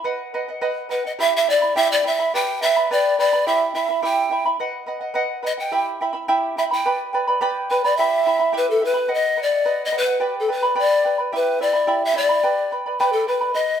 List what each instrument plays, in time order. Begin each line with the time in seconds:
0.04 charango B4 D#5 F#5
0.34 charango B4 D#5 F#5
0.48 charango D#5 F#5
0.61 charango B4 D#5 F#5
0.89 charango B4 D#5 F#5, pan flute B4
1.05 charango D#5 F#5, pan flute D#5
1.19 charango E4 G4 E5 G5 B5, pan flute E5
1.37 pan flute E5
1.47 charango E4 E5 G5 B5, pan flute D5
1.62 charango E4 E5 B5
1.75 charango E4 G4 E5 G5 B5, pan flute E5
1.92 pan flute D5
2.04 charango E4 E5 G5 B5, pan flute E5
2.19 charango E4 E5 B5
2.34 charango G4 B4 D5 G5 B5, pan flute G5
2.61 charango B4 D5 G5 B5, pan flute E5
2.76 charango B4 D5 B5
2.90 charango G4 B4 D5 G5 B5, pan flute D5
3.18 charango B4 D5 G5 B5, pan flute D5
3.33 charango B4 D5 B5
3.46 charango E4 G4 E5 G5 B5, pan flute E5
3.75 charango E4 E5 G5 B5, pan flute E5
3.89 charango E4 E5 B5
4.02 charango E4 G4 E5 G5 B5, pan flute G5
4.31 charango E4 E5 G5 B5
4.45 charango E4 E5 B5
4.60 charango B4 D#5 F#5
4.86 charango B4 D#5 F#5
5.01 charango D#5 F#5
5.14 charango B4 D#5 F#5
5.43 charango B4 D#5 F#5, pan flute D#5
5.58 charango D#5 F#5, pan flute G5
5.72 charango E4 G4 E5 G5 B5
6.01 charango E4 E5 G5 B5
6.13 charango E4 E5 B5
6.28 charango E4 G4 E5 G5 B5
6.57 charango E4 E5 G5 B5, pan flute E5
6.71 charango E4 E5 B5, pan flute G5
6.85 charango G4 B4 D5 G5 B5
7.13 charango B4 D5 G5 B5
7.27 charango B4 D5 B5
7.41 charango G4 B4 D5 G5 B5
7.70 pan flute B4, charango B4 D5 G5 B5
7.84 charango B4 D5 B5, pan flute D5
7.97 charango E4 G4 E5 G5 B5, pan flute E5
8.26 charango E4 E5 G5 B5
8.39 charango E4 E5 B5
8.52 charango E4 G4 E5 G5 B5
8.57 pan flute B4
8.70 pan flute A4
8.81 charango E4 E5 G5 B5
8.85 pan flute B4
8.94 charango E4 E5 B5
9.08 charango B4 D#5 F#5
9.14 pan flute D#5
9.37 charango B4 D#5 F#5
9.43 pan flute D5
9.50 charango D#5 F#5
9.65 charango B4 D#5 F#5
9.85 pan flute D#5
9.92 charango B4 D#5 F#5
9.98 pan flute B4
10.07 charango D#5 F#5
10.20 charango G4 B4 D5 G5 B5
10.40 pan flute A4
10.48 charango B4 D5 G5 B5, pan flute B4
10.63 charango B4 D5 B5
10.75 charango G4 B4 D5 G5 B5, pan flute D5
11.04 charango B4 D5 G5 B5
11.18 charango B4 D5 B5
11.32 charango E4 G4 E5 G5 B5, pan flute B4
11.60 charango E4 E5 G5 B5, pan flute D5
11.73 charango E4 E5 B5
11.87 charango E4 G4 E5 G5 B5
12.05 pan flute E5
12.15 charango E4 E5 G5 B5, pan flute D5
12.29 charango E4 E5 B5
12.43 charango G4 B4 D5 G5 B5
12.71 charango B4 D5 G5 B5
12.86 charango B4 D5 B5
13.00 charango G4 B4 D5 G5 B5, pan flute B4
13.12 pan flute A4
13.27 charango B4 D5 G5 B5, pan flute B4
13.41 charango B4 D5 B5
13.54 charango B4 D#5 F#5, pan flute D#5